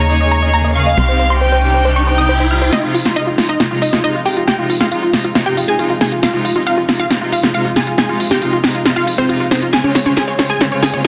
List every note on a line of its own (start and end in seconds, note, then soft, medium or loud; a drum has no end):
0.00 0.95 D#2 medium
0.00 0.67 C#5 medium
0.00 riser medium
0.10 0.17 C#3 medium
0.10 0.17 A#3 medium
0.10 0.17 D#4 medium
0.10 0.17 G#4 medium
0.10 0.18 D#5 medium
0.21 0.36 C#3 medium
0.21 0.36 A#3 medium
0.21 0.36 D#4 medium
0.21 0.36 G#4 medium
0.21 0.29 D#5 medium
0.32 0.40 A#5 medium
0.42 0.50 C#3 medium
0.42 0.50 A#3 medium
0.42 0.50 D#4 medium
0.42 0.50 G#4 medium
0.42 0.51 D#5 medium
0.53 0.69 C#3 medium
0.53 0.69 A#3 medium
0.53 0.69 D#4 medium
0.53 0.69 G#4 medium
0.53 0.62 A#5 medium
0.65 0.73 D#5 medium
0.75 0.91 C#3 medium
0.75 0.91 A#3 medium
0.75 0.91 D#4 medium
0.75 0.91 G#4 medium
0.75 1.32 F5 medium
0.75 0.84 C#6 medium
0.86 0.95 D#5 medium
0.97 2.70 C2 medium
0.97 1.05 C3 medium
0.97 1.05 G3 medium
0.97 1.05 D#4 medium
0.97 1.05 G4 medium
0.97 1.06 C6 medium
1.08 1.24 C3 medium
1.08 1.24 G3 medium
1.08 1.24 D#4 medium
1.08 1.24 G4 medium
1.08 1.17 C5 medium
1.19 1.28 C5 medium
1.30 1.38 C3 medium
1.30 1.38 G3 medium
1.30 1.38 D#4 medium
1.30 1.38 G4 medium
1.30 1.39 C6 medium
1.41 1.57 C3 medium
1.41 1.57 G3 medium
1.41 1.57 D#4 medium
1.41 1.56 G4 medium
1.41 1.50 C5 medium
1.41 1.98 G5 medium
1.52 1.61 C5 medium
1.63 1.78 C3 medium
1.63 1.78 G3 medium
1.63 1.78 D#4 medium
1.63 1.78 G4 medium
1.74 1.83 C5 medium
1.85 1.93 C3 medium
1.85 1.93 G3 medium
1.85 1.93 D#4 medium
1.85 1.93 G4 medium
1.85 1.94 C5 medium
1.96 2.11 C3 medium
1.96 2.11 G3 medium
1.96 2.11 D#4 medium
1.96 2.11 G4 medium
1.96 2.05 C#6 medium
2.07 2.16 C5 medium
2.07 2.64 G5 medium
2.18 2.25 C3 medium
2.18 2.26 G3 medium
2.18 2.26 D#4 medium
2.18 2.26 G4 medium
2.18 2.27 D#6 medium
2.29 2.44 C3 medium
2.29 2.44 G3 medium
2.29 2.44 D#4 medium
2.29 2.44 G4 medium
2.29 2.38 C5 medium
2.40 2.48 C5 medium
2.51 2.66 C3 medium
2.51 2.66 G3 medium
2.51 2.66 D#4 medium
2.51 2.66 G4 medium
2.51 2.59 F6 medium
2.62 2.70 C5 medium
2.72 2.80 C3 medium
2.72 2.80 G#3 medium
2.72 2.81 D#4 medium
2.72 2.80 D#4 medium
2.72 2.80 F4 medium
2.72 2.81 D#5 medium
2.72 snare soft
2.72 closed hi-hat medium
2.83 2.99 C3 medium
2.83 2.99 G#3 medium
2.83 2.99 D#4 medium
2.83 2.92 F4 medium
2.83 2.99 F4 medium
2.94 3.03 F4 medium
2.94 open hi-hat loud
3.05 3.13 C3 medium
3.05 3.13 G#3 medium
3.05 3.13 D#4 medium
3.05 3.14 F4 medium
3.05 3.13 F4 medium
3.05 3.14 F4 medium
3.05 snare soft
3.05 closed hi-hat soft
3.16 3.32 C3 medium
3.16 3.32 G#3 medium
3.16 3.25 D#4 medium
3.16 3.32 D#4 medium
3.16 3.32 F4 medium
3.16 3.25 D#5 medium
3.16 closed hi-hat medium
3.27 3.36 F4 medium
3.38 3.54 C3 medium
3.38 3.54 G#3 medium
3.38 3.54 D#4 medium
3.38 3.47 F4 medium
3.38 3.53 F4 medium
3.38 3.47 F4 medium
3.38 snare soft
3.38 open hi-hat medium
3.49 3.58 D#4 medium
3.49 3.58 D#5 medium
3.49 closed hi-hat medium
3.60 3.68 C3 medium
3.60 3.68 G#3 medium
3.60 3.68 D#4 medium
3.60 3.69 F4 medium
3.60 3.68 F4 medium
3.60 3.69 F4 medium
3.60 snare medium
3.60 closed hi-hat medium
3.71 3.86 C3 medium
3.71 3.86 G#3 medium
3.71 3.86 D#4 medium
3.71 3.80 F4 medium
3.71 3.86 F4 medium
3.71 3.80 F4 medium
3.82 3.91 D#4 medium
3.82 3.91 D#5 medium
3.82 open hi-hat loud
3.93 4.01 C3 medium
3.93 4.01 G#3 medium
3.93 4.01 D#4 medium
3.93 4.01 F4 medium
3.93 4.02 F4 medium
3.93 snare soft
3.93 closed hi-hat soft
4.04 4.19 C3 medium
4.04 4.19 G#3 medium
4.04 4.19 D#4 medium
4.04 4.13 D#4 medium
4.04 4.19 F4 medium
4.04 4.13 D#5 medium
4.04 closed hi-hat medium
4.15 4.23 F4 medium
4.15 4.24 F4 medium
4.25 4.41 C3 medium
4.25 4.41 G#3 medium
4.25 4.41 D#4 medium
4.25 4.41 F4 medium
4.25 4.34 G4 medium
4.25 4.34 G5 medium
4.25 open hi-hat medium
4.37 4.45 F4 medium
4.37 closed hi-hat medium
4.47 4.55 C3 medium
4.47 4.55 G#3 medium
4.47 4.56 D#4 medium
4.47 4.55 F4 medium
4.47 4.56 G4 medium
4.47 4.56 G5 medium
4.47 snare soft
4.47 closed hi-hat medium
4.59 4.74 C3 medium
4.59 4.74 G#3 medium
4.59 4.74 D#4 medium
4.59 4.67 F4 medium
4.59 4.74 F4 medium
4.70 4.78 F4 medium
4.70 open hi-hat loud
4.80 4.88 C3 medium
4.80 4.88 G#3 medium
4.80 4.88 D#4 medium
4.80 4.89 F4 medium
4.80 4.88 F4 medium
4.80 4.89 F5 medium
4.80 snare soft
4.80 closed hi-hat soft
4.92 5.07 C3 medium
4.92 5.07 G#3 medium
4.92 5.07 D#4 medium
4.92 5.00 F4 medium
4.92 5.07 F4 medium
4.92 closed hi-hat medium
5.02 5.11 F4 medium
5.14 5.29 C3 medium
5.14 5.29 G#3 medium
5.14 5.29 D#4 medium
5.14 5.29 F4 medium
5.14 snare soft
5.14 open hi-hat medium
5.24 5.33 F4 medium
5.24 closed hi-hat medium
5.35 5.43 C3 medium
5.35 5.43 G#3 medium
5.35 5.43 D#4 medium
5.35 5.43 F4 medium
5.35 5.44 F4 medium
5.35 snare medium
5.35 closed hi-hat medium
5.46 5.62 C3 medium
5.46 5.62 G#3 medium
5.46 5.62 D#4 medium
5.46 5.62 F4 medium
5.46 5.55 G4 medium
5.46 5.55 G5 medium
5.57 5.66 F4 medium
5.57 open hi-hat loud
5.68 5.76 C3 medium
5.68 5.76 G#3 medium
5.68 5.76 D#4 medium
5.68 5.76 F4 medium
5.68 5.77 G#4 medium
5.68 5.77 G#5 medium
5.68 closed hi-hat soft
5.79 5.94 C3 medium
5.79 5.94 G#3 medium
5.79 5.94 D#4 medium
5.79 5.94 F4 medium
5.79 5.88 F4 medium
5.79 closed hi-hat medium
5.90 5.99 F4 medium
6.01 6.16 C3 medium
6.01 6.16 G#3 medium
6.01 6.16 D#4 medium
6.01 6.16 F4 medium
6.01 6.10 G#4 medium
6.01 6.10 G#5 medium
6.01 snare medium
6.01 open hi-hat medium
6.12 6.21 F4 medium
6.12 closed hi-hat medium
6.23 6.30 C3 medium
6.23 6.30 G#3 medium
6.23 6.30 D#4 medium
6.23 6.30 F4 medium
6.23 6.32 F4 medium
6.23 6.32 F5 loud
6.23 snare medium
6.23 closed hi-hat medium
6.33 6.49 C3 medium
6.33 6.49 G#3 medium
6.33 6.49 D#4 medium
6.33 6.49 F4 medium
6.33 6.42 F4 medium
6.33 6.43 F4 medium
6.45 6.53 F4 medium
6.45 open hi-hat loud
6.55 6.63 C3 medium
6.55 6.63 G#3 medium
6.55 6.63 D#4 medium
6.55 6.63 F4 medium
6.55 6.64 F4 medium
6.55 closed hi-hat soft
6.66 6.82 C3 medium
6.66 6.82 G#3 medium
6.66 6.82 D#4 medium
6.66 6.82 F4 medium
6.66 6.75 F4 medium
6.66 6.75 F5 medium
6.66 closed hi-hat medium
6.77 6.86 F4 medium
6.88 7.04 C3 medium
6.88 7.04 G#3 medium
6.88 7.04 D#4 medium
6.88 7.04 F4 medium
6.88 6.97 F4 medium
6.88 snare medium
6.88 open hi-hat medium
6.99 7.08 F4 medium
6.99 7.08 F5 medium
6.99 closed hi-hat soft
7.10 7.18 C3 medium
7.10 7.18 G#3 medium
7.10 7.18 D#4 medium
7.10 7.19 F4 medium
7.10 7.18 F4 medium
7.10 7.19 F4 medium
7.10 snare medium
7.10 closed hi-hat medium
7.21 7.37 C3 medium
7.21 7.36 G#3 medium
7.21 7.37 D#4 medium
7.21 7.37 F4 medium
7.21 7.30 F4 medium
7.32 7.41 F4 medium
7.32 7.41 F5 medium
7.32 open hi-hat loud
7.43 7.51 C3 medium
7.43 7.51 G#3 medium
7.43 7.51 D#4 medium
7.43 7.51 F4 medium
7.43 7.52 F4 medium
7.43 snare medium
7.54 7.69 C3 medium
7.54 7.70 G#3 medium
7.54 7.70 D#4 medium
7.54 7.69 F4 medium
7.54 7.63 F4 medium
7.54 7.63 F5 medium
7.54 closed hi-hat medium
7.65 7.74 F4 medium
7.76 7.91 C3 medium
7.76 7.92 G#3 medium
7.76 7.92 D#4 medium
7.76 7.92 F4 medium
7.76 7.85 G#4 medium
7.76 7.85 G#5 medium
7.76 snare medium
7.76 open hi-hat medium
7.87 7.96 F4 medium
7.87 closed hi-hat medium
7.98 8.06 C3 medium
7.98 8.06 G#3 medium
7.98 8.06 D#4 medium
7.98 8.06 F4 medium
7.98 8.07 G#4 medium
7.98 8.07 G#5 medium
7.98 snare medium
7.98 closed hi-hat medium
8.09 8.24 C3 medium
8.09 8.24 G#3 medium
8.09 8.24 D#4 medium
8.09 8.18 F4 medium
8.09 8.24 F4 medium
8.20 8.29 F4 medium
8.20 open hi-hat loud
8.31 8.39 C3 medium
8.31 8.39 G#3 medium
8.31 8.39 D#4 medium
8.31 8.39 F4 medium
8.31 8.40 G4 medium
8.31 8.40 G5 medium
8.31 snare medium
8.31 closed hi-hat soft
8.42 8.57 C3 medium
8.42 8.57 G#3 medium
8.42 8.57 D#4 medium
8.42 8.50 F4 medium
8.42 8.57 F4 medium
8.42 closed hi-hat medium
8.53 8.61 F4 medium
8.64 8.79 C3 medium
8.64 8.79 G#3 medium
8.64 8.79 D#4 medium
8.64 8.79 F4 medium
8.64 snare medium
8.64 open hi-hat medium
8.74 8.83 F4 medium
8.74 closed hi-hat soft
8.85 8.94 C3 medium
8.85 8.94 G#3 medium
8.85 8.94 D#4 medium
8.85 8.94 F4 medium
8.85 snare medium
8.85 closed hi-hat medium
8.96 9.12 C3 medium
8.96 9.12 G#3 medium
8.96 9.12 D#4 medium
8.96 9.05 F4 medium
8.96 9.12 F4 medium
8.96 9.05 F5 medium
9.07 9.16 F4 medium
9.07 open hi-hat loud
9.18 9.26 C3 medium
9.18 9.26 G#3 medium
9.18 9.27 C4 medium
9.18 9.26 D#4 medium
9.18 9.26 F4 medium
9.18 9.27 C5 medium
9.18 closed hi-hat soft
9.29 9.45 C3 medium
9.29 9.45 G#3 medium
9.29 9.45 D#4 medium
9.29 9.38 F4 medium
9.29 9.45 F4 medium
9.29 closed hi-hat medium
9.40 9.49 F4 medium
9.51 9.67 C3 medium
9.51 9.67 G#3 medium
9.51 9.60 C4 medium
9.51 9.67 D#4 medium
9.51 9.67 F4 medium
9.51 9.60 C5 medium
9.51 snare medium
9.51 open hi-hat medium
9.62 9.71 F4 medium
9.62 closed hi-hat soft
9.73 9.81 C#3 medium
9.73 9.81 G#3 medium
9.73 9.81 C4 medium
9.73 9.81 F4 medium
9.73 9.82 G#4 medium
9.73 9.82 G#5 medium
9.73 9.82 G#5 loud
9.73 snare medium
9.73 closed hi-hat medium
9.73 riser medium
9.84 10.00 C#3 medium
9.84 10.00 G#3 medium
9.84 10.00 C4 medium
9.84 10.00 F4 medium
9.84 9.93 C#5 medium
9.84 high conga medium
9.95 10.04 C#5 medium
9.95 snare medium
9.95 open hi-hat loud
10.06 10.14 C#3 medium
10.06 10.14 G#3 medium
10.06 10.14 C4 medium
10.06 10.14 F4 medium
10.06 10.15 C#5 medium
10.06 closed hi-hat soft
10.06 high conga medium
10.17 10.33 C#3 medium
10.17 10.33 G#3 medium
10.17 10.33 C4 medium
10.17 10.33 F4 medium
10.17 10.26 G#4 medium
10.17 10.26 G#5 medium
10.17 snare medium
10.17 closed hi-hat medium
10.28 10.36 C#5 medium
10.28 10.37 C#5 medium
10.39 10.54 C#3 medium
10.39 10.54 G#3 medium
10.39 10.54 C4 medium
10.39 10.54 F4 medium
10.39 10.47 C#5 medium
10.39 10.48 C#5 medium
10.39 snare medium
10.39 open hi-hat medium
10.50 10.58 G#4 medium
10.50 10.58 G#5 medium
10.50 closed hi-hat soft
10.61 10.69 C#3 medium
10.61 10.69 G#3 medium
10.61 10.69 C4 medium
10.61 10.69 F4 medium
10.61 10.69 C#5 medium
10.61 snare medium
10.61 closed hi-hat medium
10.72 10.87 C#3 medium
10.72 10.87 G#3 medium
10.72 10.87 C4 medium
10.72 10.87 F4 medium
10.72 10.80 C#5 medium
10.82 10.91 G#4 medium
10.82 10.91 G#5 medium
10.82 snare medium
10.82 open hi-hat loud
10.94 11.02 C#3 medium
10.94 11.02 G#3 medium
10.94 11.02 C4 medium
10.94 11.02 F4 medium
10.94 11.02 C#5 medium
10.94 closed hi-hat soft